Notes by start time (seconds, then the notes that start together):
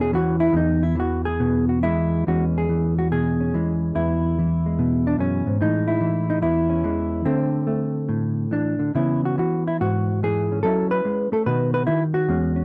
Already playing: E2 B2 E3 B3
0.00 C#4 G#4
0.13 E3 F#4
0.40 E4
0.53 E2 D#4
0.83 E4
0.95 E3
1.00 F#4
1.25 G#4
1.40 B2
1.69 F#4
1.83 E3 G#3 E4
2.27 E2 E3 G#3 C#4 F#4
2.58 G#4
2.69 E3
2.99 F#4
3.12 B2 G#4
3.40 C#4
3.54 E3 G#3
3.95 E2 E4
4.39 E3
4.66 G#3
4.79 B2
5.07 D4
5.19 F#2 C#4
5.47 G#2
5.61 A2 E3 G#3 D#4
5.88 E4
6.01 E3
6.30 D#4
6.42 E2 E4
6.70 C#4
6.84 E3 G#3
7.25 D3 A3 C4
7.67 A3
8.09 A2
8.51 E3 D4
8.79 D3
8.95 C#3 E3 B3 C#4 E4
9.25 F#4
9.38 E3 F#4
9.68 E4
9.81 G#2 F#4
10.23 E3 G#4
10.52 C#4
10.63 F#3 C#4 E4 A4
10.91 B4
11.05 G#3
11.32 A3 A4
11.46 B2 D#3 F#4 B4
11.74 B4
11.87 D#3 E4
12.14 F#4
12.28 E2 G#3 C#4
12.56 C#4